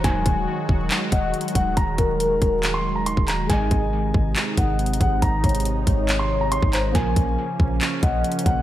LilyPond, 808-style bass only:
\new Staff \with { instrumentName = "808-style bass" } { \clef bass \time 4/4 \key ees \dorian \tempo 4 = 139 ees,,8 ees,,8 r8 ees,,8 r8 ees,,8 r8 ees,,8 | ees,,8 ees,,4 ees,,4.~ ees,,16 ees,,8. | aes,,8 aes,,4 aes,,8 r8 aes,,4 aes,,8 | aes,,8 aes,,4 aes,,4.~ aes,,16 aes,,8. |
bes,,8 bes,,8 r8 bes,,8 r8 bes,,8 r8 bes,,8 | }